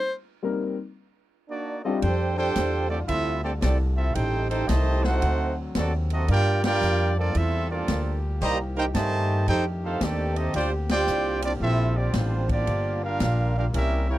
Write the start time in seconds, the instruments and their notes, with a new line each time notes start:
Already playing: alto saxophone C5
0.43 grand piano G3 A#3 C4 D#4 A#4
1.49 trumpet section A#3 D#4 F#4 D5, trombone section D4
1.84 grand piano G3 C4 D4 F4 G4, trombone section A3 C4 D#4, trumpet section C4 F#4 A4 D#5
2.01 upright bass F2, trombone section D3 G3 A3 C4 D4 F4 G4, trumpet section D4 A4 C5 G5, kick, ride
2.36 trombone section C4 D4 G4, trumpet section D4 A4 C5 G5
2.56 upright bass E2, kick, snare, hi-hat pedal, ride
2.89 trombone section D3 A3 D4, trumpet section C4 G4 A4 D5
3.07 upright bass D2, trumpet section C4 F4 A4 E5, trombone section E4, kick, ride
3.43 trombone section D3 A3 D4, trumpet section C4 G4 A4 D5
3.61 upright bass C2, trombone section D3 A3 D4, trumpet section C4 G4 A4 D5, kick, snare, hi-hat pedal, ride
3.96 trumpet section C4 F4 A4 E5, trombone section E4
4.14 upright bass A1, trombone section C3 C4 D#4 G4, trumpet section D#4 A4 C5 G5, kick, ride
4.50 trombone section C4 D#4 G4, trumpet section D#4 A4 C5 G5, ride
4.67 upright bass C2, trombone section C3 D#3 A3, trumpet section G4 C5 D#5 A5, kick, snare, hi-hat pedal, ride
5.03 trombone section A3 C4 F#4, trumpet section D#4 A4 C5 F#5, snare
5.22 upright bass D2, trombone section D3 F#3 C4, kick, ride
5.75 upright bass D#2, trombone section F#3 A3 D4, trumpet section C4 F#4 A4 D5, kick, snare, hi-hat pedal, ride
6.10 trombone section A3 C4 D#4, trumpet section C4 F#4 A4 D#5, ride
6.27 upright bass G2, trombone section A#2 G3 A#3 D4 F4 G4, trumpet section F4 A#4 D5, kick, ride
6.31 trumpet section G5
6.63 trombone section A#3 D4 G4, trumpet section F4 A#4 D5 G5, snare, ride
6.81 upright bass F2, hi-hat pedal
7.17 trombone section F3 A#3 D4, trumpet section A#3 F4 A4 D5
7.35 upright bass E2, trumpet section C4 F4 A4 E5, trombone section E4, kick, ride
7.70 trombone section F3 A#3 D4, trumpet section A#3 F4 A4 D5
7.88 upright bass D2, kick, snare, hi-hat pedal, ride
8.41 upright bass C2, trombone section D#3 G3 A#3 C4, trumpet section G4 C5 D#5 A#5, kick, ride
8.76 trombone section A#3 D#4 G4, trumpet section D#4 A#4 C5 G5
8.93 upright bass G2, trombone section A#2 D#3 A3, trumpet section G4 C5 D#5 A5, kick, snare, hi-hat pedal, ride
9.48 upright bass F2, trombone section A3 C4 D4 D#4 G4, trumpet section D#4 A4 C5 G5, kick, ride
9.83 trombone section A3 C4 F4, trumpet section D#4 A4 C5 F5
10.01 upright bass D#2, trombone section D#3 A3 D4, trumpet section C4 G4 A4 D5, kick, snare, hi-hat pedal, ride
10.36 trombone section A3 C4 D#4, trumpet section C4 G4 A4 D#5, ride
10.54 upright bass D2, trombone section D3 G3 A#3 C4 D4 G4, trumpet section F4 C5 D5 G5, kick, ride
10.89 trombone section G3 D4 G4, trumpet section F4 C5 D5 G5, snare, ride
11.07 upright bass C2, hi-hat pedal
11.42 trombone section F3 G3 D4, trumpet section C4 F4 G4 D5, ride
11.60 upright bass A#1, trumpet section C4 F4 A4 E5, trombone section E4, kick
11.97 trombone section F3 G3 D4, trumpet section C4 F4 G4 D5
12.13 upright bass A1, trombone section F3 G3 C4, trumpet section G3 D4 F4 C5, kick, snare, hi-hat pedal, ride
12.49 trombone section F3 A#3 D4, trumpet section A#3 F4 G4 D5, kick, ride
12.67 upright bass G1, trombone section G3 A#3 F4, kick, ride
13.03 trombone section A#3 D4 F4, trumpet section D4 G4 A#4 F5
13.20 upright bass A#1, kick, snare, hi-hat pedal, ride
13.57 trombone section A#3 D4 F4, trumpet section D4 G4 A#4 F5
13.74 upright bass C2, trombone section C#3 G3 A#3 C4 E4, trumpet section C#4 G4 A#4 E5, kick, ride
14.10 trombone section A#3 E4 G4, trumpet section E4 A#4 C#5 G5